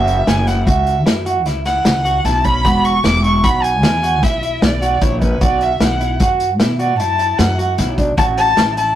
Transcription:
Already playing: upright bass F#1, clean electric guitar F#4, violin E5
0.07 closed hi-hat
0.27 upright bass F#1, clean electric guitar E4, violin G#5, snare, closed hi-hat
0.47 clean electric guitar E4, violin F#5, snare, closed hi-hat
0.67 upright bass C#2, clean electric guitar F#4, violin E5, kick, closed hi-hat
0.87 closed hi-hat
1.06 upright bass F#2, clean electric guitar E4, snare, closed hi-hat
1.26 clean electric guitar F#4, closed hi-hat
1.46 upright bass C#2, clean electric guitar E4, snare, closed hi-hat
1.65 clean electric guitar E4, violin F#5, snare, closed hi-hat
1.85 upright bass C#2, snare, closed hi-hat
2.05 clean electric guitar F#4, closed hi-hat
2.25 upright bass B1, clean electric guitar E4, violin A5, snare, closed hi-hat
2.44 clean electric guitar C#4, violin B5, kick, closed hi-hat
2.65 upright bass E1, clean electric guitar F#4, kick, closed hi-hat
2.84 violin C#6, closed hi-hat
3.04 upright bass E1, clean electric guitar E4, violin D6, snare, closed hi-hat
3.24 clean electric guitar E4, violin C#6, closed hi-hat
3.44 upright bass B1, clean electric guitar F#4, violin B5, kick, closed hi-hat
3.63 violin G#5, closed hi-hat
3.83 upright bass E2, clean electric guitar E4, snare, closed hi-hat
4.03 clean electric guitar F#4, closed hi-hat
4.23 upright bass B1, clean electric guitar E4, violin E5, kick, snare, closed hi-hat
4.43 clean electric guitar E4, closed hi-hat
4.62 upright bass B1, violin D5, snare, closed hi-hat
4.82 clean electric guitar F#4, closed hi-hat
5.01 upright bass A#1, clean electric guitar E4, violin C#5, kick, closed hi-hat
5.21 clean electric guitar C#4, violin B4, kick, closed hi-hat
5.41 upright bass B1, clean electric guitar F#4, violin D5, kick, closed hi-hat
5.61 violin E5, closed hi-hat
5.80 upright bass B1, clean electric guitar E4, violin F#5, snare, closed hi-hat
6.00 clean electric guitar E4, closed hi-hat
6.20 upright bass F#2, clean electric guitar F#4, kick, closed hi-hat
6.40 closed hi-hat
6.60 upright bass B2, clean electric guitar E4, snare, closed hi-hat
6.79 clean electric guitar F#4, violin D5, closed hi-hat
6.99 upright bass F#2, clean electric guitar E4, violin A5, closed hi-hat
7.19 clean electric guitar E4, closed hi-hat
7.39 upright bass F#2, violin F#5, snare, closed hi-hat
7.58 clean electric guitar F#4, closed hi-hat
7.78 upright bass B1, clean electric guitar E4, snare, closed hi-hat
7.98 clean electric guitar D4, kick, closed hi-hat
8.17 upright bass A1, clean electric guitar F#4, violin A5, kick, closed hi-hat
8.37 violin A5, closed hi-hat
8.57 upright bass A1, clean electric guitar E4, snare, closed hi-hat
8.77 clean electric guitar E4, violin A5, closed hi-hat

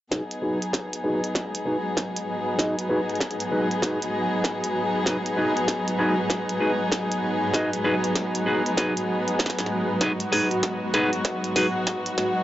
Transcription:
0.11 string section F#3 B3 D#4 G#4, ambient pad G#3, clean electric guitar D#4 F#4 G#4 B4, kick, snare, closed hi-hat
0.20 ambient pad F#4
0.31 closed hi-hat
0.36 ambient pad B4
0.42 clean electric guitar D#4 F#4 G#4 B4
0.62 closed hi-hat
0.73 kick, snare, closed hi-hat
0.93 closed hi-hat
0.99 ambient pad D#5
1.04 clean electric guitar D#4 F#4 G#4 B4
1.24 closed hi-hat
1.35 kick, snare, closed hi-hat
1.55 closed hi-hat
1.65 clean electric guitar D#4 F#4 G#4 B4
1.97 kick, snare, closed hi-hat
2.17 closed hi-hat
2.58 clean electric guitar D#4 F#4 G#4 D#5, kick, snare, closed hi-hat
2.79 closed hi-hat
2.89 clean electric guitar D#4 F#4 G#4 B4
3.10 closed hi-hat
3.15 closed hi-hat
3.21 kick, snare, closed hi-hat
3.31 closed hi-hat
3.40 closed hi-hat
3.51 clean electric guitar D#4 F#4 G#4 B4
3.71 closed hi-hat
3.82 clean electric guitar D#4 F#4 G#4 B4, kick, snare, closed hi-hat
4.02 closed hi-hat
4.44 kick, snare, closed hi-hat
4.64 closed hi-hat
5.06 clean electric guitar D#4 F#4 G#4 B4, kick, snare, closed hi-hat
5.26 closed hi-hat
5.37 clean electric guitar D#4 F#4 G#4 B4
5.57 closed hi-hat
5.68 kick, snare, closed hi-hat
5.88 closed hi-hat
5.99 clean electric guitar D#4 F#4 G#4 B4
6.30 kick, snare, closed hi-hat
6.49 closed hi-hat
6.60 clean electric guitar D#4 F#4 G#4 B4
6.92 kick, snare, closed hi-hat
7.12 closed hi-hat
7.54 clean electric guitar D#4 F#4 G#4 D#5, kick, snare, closed hi-hat
7.73 closed hi-hat
7.84 clean electric guitar D#4 F#4 G#4 B4
8.04 closed hi-hat
8.15 kick, snare, closed hi-hat
8.35 closed hi-hat
8.46 clean electric guitar D#4 F#4 G#4 B4
8.66 closed hi-hat
8.77 clean electric guitar D#4 F#4 G#4 B4, kick, snare, closed hi-hat
8.97 closed hi-hat
9.28 closed hi-hat
9.39 kick, snare, closed hi-hat
9.46 snare
9.50 snare
9.59 snare, closed hi-hat
9.60 snare
9.66 snare
10.01 clean electric guitar D#4 F#4 G#4 B4, string section F#4, kick, snare, closed hi-hat
10.20 closed hi-hat
10.32 clean electric guitar D#4 F#4 G#4 B4, snare, open hi-hat
10.51 closed hi-hat
10.63 kick, snare, closed hi-hat
10.94 clean electric guitar D#4 F#4 G#4 B4, snare
11.13 closed hi-hat
11.25 kick, snare, closed hi-hat
11.44 closed hi-hat
11.56 clean electric guitar D#4 F#4 G#4 B4, snare, open hi-hat
11.63 ambient pad C#5
11.87 kick, snare, closed hi-hat
12.06 closed hi-hat
12.18 snare

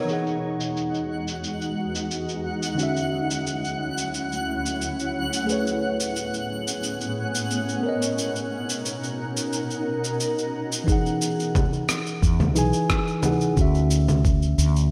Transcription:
Already playing: tine electric piano B3 A#4 C#5 D#5 F#5
0.05 ambient pad E2 G#3 D#4 F#4, tine electric piano E3 D#4, shaker
0.09 tine electric piano G#4 F#5, synth texture F#5 F#6
0.26 shaker
0.60 shaker
0.77 shaker
0.94 shaker
1.28 shaker
1.44 shaker
1.61 shaker
1.95 shaker
2.11 shaker
2.29 shaker
2.63 shaker
2.75 tine electric piano D3 C#4, ambient pad E4, shaker
2.79 ambient pad D2 F#3 C#4, tine electric piano F#4 E5
2.96 shaker
3.31 shaker
3.47 shaker
3.64 shaker
3.98 shaker
4.14 shaker
4.32 shaker
4.66 shaker
4.82 shaker
4.99 shaker
5.33 shaker
5.44 tine electric piano A3 G#4
5.49 ambient pad A2 B3 C#4 G#4, tine electric piano B4 C#5, shaker
5.67 shaker
6.00 shaker
6.16 shaker
6.34 shaker
6.68 shaker
6.83 shaker
7.01 shaker
7.35 shaker
7.51 shaker
7.69 shaker
7.81 ambient pad B2 D#4 A#4, tine electric piano B3 A#4
7.86 tine electric piano C#5 D#5
8.02 shaker
8.18 shaker
8.36 shaker
8.69 shaker
8.85 shaker
9.03 shaker
9.37 shaker
9.53 shaker
9.70 shaker
10.04 shaker
10.20 shaker
10.38 shaker
10.72 shaker
10.84 tine electric piano E3 D#4, kick
10.88 tine electric piano G#4, shaker
10.92 tine electric piano F#5
11.06 shaker
11.22 shaker
11.40 shaker
11.55 kick, low conga, shaker
11.73 shaker
11.89 cross-stick, shaker
12.07 shaker
12.22 fretless electric bass E2, kick, shaker
12.40 low conga, shaker
12.55 fretless electric bass B1, tine electric piano E3 D#4 G#4 G#5, shaker
12.73 shaker
12.90 kick, cross-stick, shaker
13.07 shaker
13.21 tine electric piano E3 D#4 G#4 F#5, low conga, shaker
13.41 shaker
13.54 fretless electric bass D2, tine electric piano D3 C#4, kick, shaker
13.59 tine electric piano F#4 E5
13.74 shaker
13.91 shaker
14.08 low conga, shaker
14.25 kick, shaker
14.42 shaker
14.58 fretless electric bass D2, shaker
14.76 shaker

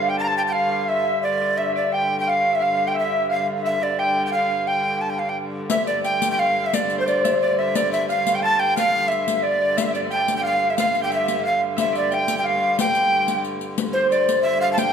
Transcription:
Already playing: hurdy-gurdy G2 D3, harp C5 D5 F5, recorder F5
0.08 recorder G5, harp G5
0.16 recorder A5, harp A5
0.23 recorder A5 A#5
0.28 recorder A5, harp A5
0.37 recorder G5
0.47 recorder F5 G5
0.53 recorder F5, harp F5
0.72 harp F5
0.88 recorder E5, harp E5
1.23 recorder D5, harp D5
1.41 harp D5
1.57 hurdy-gurdy G2 D3, recorder E5, harp E5
1.76 harp D5, recorder D5
1.92 recorder G5, harp G5
2.17 recorder G5, harp G5
2.27 recorder F5, harp F5
2.53 harp E5, recorder E5
2.60 harp F5, recorder F5
2.87 harp G5, recorder G5
2.93 recorder E5, harp E5
2.99 recorder E5
3.28 recorder F5, harp F5
3.61 recorder E5
3.65 harp E5, recorder E5
3.82 harp D5, recorder D5
3.98 recorder G5, harp G5
4.23 recorder G5, harp G5
4.31 recorder F5, harp F5
4.48 harp F5
4.67 recorder G5, harp G5
5.01 recorder A5
5.10 recorder G5
5.19 recorder F5
5.29 recorder G5
5.68 hurdy-gurdy G2 D3, recorder E5, harp E5, riq
5.87 harp D5, recorder D5, riq
6.04 recorder G5, harp G5, riq
6.22 riq
6.30 harp G5, recorder G5
6.39 harp F5, recorder F5
6.64 harp E5, recorder E5
6.73 harp D5, recorder D5, riq
6.90 riq
6.98 harp C5, recorder C5
7.06 harp D5, recorder D5, riq
7.24 harp E5, riq
7.37 recorder D5, harp E5
7.41 recorder D5, harp D5
7.59 recorder E5, harp E5
7.74 recorder D5, harp D5, riq
7.93 recorder E5, riq
8.09 harp F5, recorder F5, riq
8.27 riq
8.34 harp G5, recorder G5
8.42 recorder A5, harp A5
8.59 recorder G5
8.77 recorder F5, harp F5, riq
8.92 recorder F5, harp F5
9.08 recorder E5, harp E5, riq
9.28 riq
9.37 recorder E5
9.43 recorder D5, harp D5
9.62 harp D5
9.77 hurdy-gurdy G2 D3, harp E5, recorder E5, riq
9.81 recorder E5 F5, harp E5
9.93 harp D5, recorder D5, riq
10.10 harp G5, recorder G5 A5, riq
10.21 recorder G5
10.28 recorder G5, riq
10.35 harp G5, recorder G5
10.41 recorder F5, harp F5
10.45 recorder F5 G5
10.54 recorder F5
10.70 harp E5, recorder E5
10.76 recorder F5, harp F5, riq
10.95 riq
11.02 recorder F5 G5, harp G5
11.10 recorder E5, harp E5, riq
11.14 recorder E5
11.28 riq
11.43 harp F5, recorder F5
11.76 harp E5, recorder E5, riq
11.93 harp D5, riq
11.97 recorder D5
12.11 harp G5, recorder G5, riq
12.28 riq
12.36 harp G5, recorder G5
12.43 recorder F5, harp F5
12.78 harp G5, recorder G5, riq
12.95 riq
13.28 riq
13.44 riq
13.61 riq
13.78 hurdy-gurdy G2 D3, riq
13.93 recorder C5, harp C5
14.11 recorder D5, harp D5, riq
14.28 recorder D5, riq
14.42 recorder E5, harp E5
14.60 recorder F5, harp F5
14.73 recorder A5
14.78 recorder G5, harp G5, riq

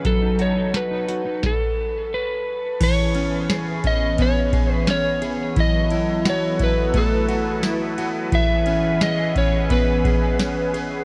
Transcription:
Already playing: analog synth pad B3 B4, clean electric guitar C#4 G#4
0.04 analog synth pad F#3 D#4 A4, clean electric guitar F#3, electric slide guitar A4, kick, closed hi-hat
0.22 clean electric guitar D#4
0.39 clean electric guitar F#4, electric slide guitar C#5, closed hi-hat
0.56 clean electric guitar D#4
0.74 clean electric guitar F#4, electric slide guitar B4, snare, closed hi-hat
0.91 clean electric guitar D#4
1.08 clean electric guitar F#4, closed hi-hat
1.25 clean electric guitar D#4
1.43 electric slide guitar A4, kick, snare
2.14 electric slide guitar B4
2.81 clean electric guitar E3, analog synth pad E3 B3 C#4 G#4 B4, electric slide guitar C#5, kick, crash, ride
3.15 clean electric guitar C#4, ride
3.50 clean electric guitar G#4, snare, ride, tambourine
3.58 electric slide guitar B4
3.84 clean electric guitar C#4, electric slide guitar D#5, kick, ride
4.18 clean electric guitar B3, electric slide guitar C#5, kick, ride
4.53 clean electric guitar G#4, kick, ride
4.74 electric slide guitar B4
4.87 clean electric guitar C#4, electric slide guitar C#5, snare, ride, tambourine
5.22 clean electric guitar G#4, ride
5.56 clean electric guitar E3, analog synth pad F#3 E4 A4 B4, kick, ride
5.60 electric slide guitar D#5
5.90 clean electric guitar E4, ride
6.25 clean electric guitar F#4, snare, ride, tambourine
6.30 electric slide guitar C#5
6.60 clean electric guitar E4, kick, ride
6.64 electric slide guitar B4
6.94 clean electric guitar A3, electric slide guitar A4, kick, ride
7.28 clean electric guitar F#4, ride
7.63 clean electric guitar E4, snare, ride, tambourine
7.98 clean electric guitar F#4, ride
8.32 clean electric guitar E3, analog synth pad E3 C#4 G#4, electric slide guitar E5, kick, ride
8.66 clean electric guitar C#4, ride
9.01 clean electric guitar G#4, electric slide guitar D#5, snare, ride, tambourine
9.36 clean electric guitar C#4, electric slide guitar C#5, kick, ride
9.70 clean electric guitar B3, electric slide guitar B4, kick, ride
10.05 clean electric guitar G#4, kick, ride
10.39 clean electric guitar C#4, snare, ride, tambourine
10.74 clean electric guitar G#4, ride

